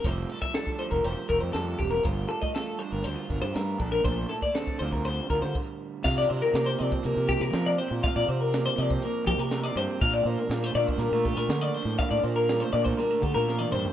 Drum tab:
CC |----------------|----------------|------------x---|x---------------|
RD |x-x-x-x-x-x-x-x-|x-x-x-x-x-x-x-x-|x-x-x-x-x-x-----|----------------|
HH |----------------|----------------|----------------|--x-x-x-x-x-x-x-|
SD |----o-------o---|----o-------o---|----o-----------|---oo-------o---|
T1 |----------------|----------------|----------------|----------------|
T2 |----------------|----------------|----------------|----------------|
FT |----------------|----------------|----------------|----------------|
BD |o--o-o-o--o---o-|o--o------o---o-|o--o-o-o--o-o---|o------o--o-----|

CC |----------------|----------------|----------------|
RD |----------------|----------------|----------------|
HH |x-x-x-x-x-x-x-x-|x-x-x-x-x-x-x-x-|x-x-x-x-x-x-----|
SD |----o-------o---|----o------oo---|----o------oo---|
T1 |----------------|----------------|-------------o--|
T2 |----------------|----------------|--------------o-|
FT |----------------|----------------|---------------o|
BD |o------o--o-----|o------o--o-----|o------o--o-----|